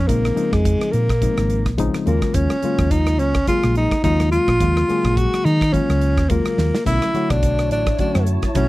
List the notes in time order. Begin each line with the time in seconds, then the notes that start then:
0.07 A#1 C#3 F3 G#3 A#3 C4 D#4, kick, closed hi-hat
0.25 cross-stick, closed hi-hat
0.35 C#3 F3 G#3 C4 D#4, muted fingered electric bass stroke, closed hi-hat
0.52 F2 G#3, kick, cross-stick
0.65 kick, closed hi-hat
0.81 cross-stick, closed hi-hat
0.91 A#2 A#3, closed hi-hat
1.09 kick, cross-stick, closed hi-hat
1.21 C#3 F3 G#3 C4 D#4, kick, closed hi-hat
1.37 G#1, cross-stick, closed hi-hat
1.50 closed hi-hat
1.66 A#1, kick, cross-stick, closed hi-hat
1.78 C#3 F3 G#3 C4 D#4, kick, closed hi-hat
1.94 muted fingered electric bass stroke, cross-stick, closed hi-hat
2.06 D#2 C#3 F#3 G#3 A#3 F4, closed hi-hat
2.22 kick, cross-stick, closed hi-hat
2.34 D#2 C#4, kick, closed hi-hat
2.50 cross-stick, closed hi-hat
2.62 C#3 F#3 G#3 A#3 F4, muted fingered electric bass stroke, closed hi-hat
2.78 D#2, kick, cross-stick, closed hi-hat
2.91 D#4, kick, closed hi-hat
3.06 cross-stick, closed hi-hat
3.19 C#2 C#4, closed hi-hat
3.34 kick, cross-stick, closed hi-hat
3.47 C#3 F#3 G#3 A#3 F4 G#4, kick, closed hi-hat
3.63 A#1, cross-stick, closed hi-hat
3.75 D#4, closed hi-hat
3.91 kick, cross-stick, closed hi-hat
4.03 D#2 C#3 F#3 G#3 A#3 D#4 F4, kick, closed hi-hat
4.20 cross-stick, closed hi-hat
4.32 F4, closed hi-hat
4.48 A#1, kick, cross-stick
4.60 D#2 C#3 F#3 G#3 A#3 F4, kick, closed hi-hat
4.77 cross-stick, closed hi-hat
4.88 C#3 F#3 G#3 A#3 G#4, muted fingered electric bass stroke, closed hi-hat
5.04 A#1, kick, cross-stick
5.17 F#4, kick, closed hi-hat
5.33 cross-stick, closed hi-hat
5.45 D#3 D#4, closed hi-hat
5.61 kick, cross-stick, closed hi-hat
5.72 C#3 F#3 G#3 A#3 C#4 F4, kick, closed hi-hat
5.89 C#2, cross-stick, closed hi-hat
6.01 closed hi-hat
6.17 D#2, kick, cross-stick, closed hi-hat
6.29 C#3 F#3 G#3 A#3 F4, kick, closed hi-hat
6.45 muted fingered electric bass stroke, cross-stick, closed hi-hat
6.58 D#2, snare
6.75 snare
6.85 B1 D3 F#3 A3 C#4 E4 C#5 A5, kick, closed hi-hat, splash
7.02 cross-stick, closed hi-hat
7.14 D3 F#3 A3 F#4 C#5, muted fingered electric bass stroke, closed hi-hat
7.30 B1 D4, kick, cross-stick, closed hi-hat
7.43 kick, closed hi-hat
7.59 cross-stick, closed hi-hat
7.71 A1 D4, closed hi-hat
7.86 kick, cross-stick, closed hi-hat
7.98 D3 F#3 A3 C#4 D4 F#4, kick, closed hi-hat
8.15 F#2, cross-stick, closed hi-hat
8.27 closed hi-hat
8.42 kick, cross-stick, closed hi-hat
8.55 B1 D3 F#3 A3 C#4 F#4, kick, closed hi-hat